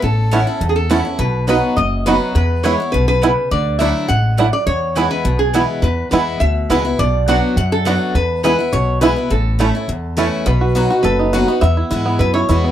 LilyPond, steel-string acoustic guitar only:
\new Staff \with { instrumentName = "Steel-string acoustic guitar" } { \time 4/4 \key b \dorian \tempo 4 = 207 << { r4 <e b cis' e'>8 <cis' e'>8 r4 <e b cis' e'>8 <cis' e'>8 | r4 <fis b dis' fis'>4 r4 <fis b dis' fis'>4 | r4 <e gis b e'>8 <b e'>8 r2 | r4 <fis a d' e'>4 r2 |
r4 <e gis b e'>4 r4 <e gis b e'>4 | r4 <e gis b e'>4 r4 <e gis b e'>8 <b e'>8 | r4 <fis b d' fis'>4 r4 <fis b d' fis'>4 | r4 <e gis b e'>8 <b e'>8 r4 <e gis b e'>8 <b e'>8 |
r4 <e a cis' e'>8 <cis' e'>8 r4 <e a cis' e'>4 | r4 <fis b dis' fis'>8 <dis' fis'>8 r4 <fis b dis' fis'>8 <dis' fis'>8 | r4 <e gis b e'>4 r4 <e gis b e'>4 | } \\ { a,2 e,2 | b,2 fis,2 | e,2 b,4 cis4 | d2 gis,4 fis,4 |
e,2 b,2 | e,2 b,2 | b,2 fis,2 | e,2 b,2 |
a,2 e,2 | b,2 fis,2 | e,2 b,2 | } >> }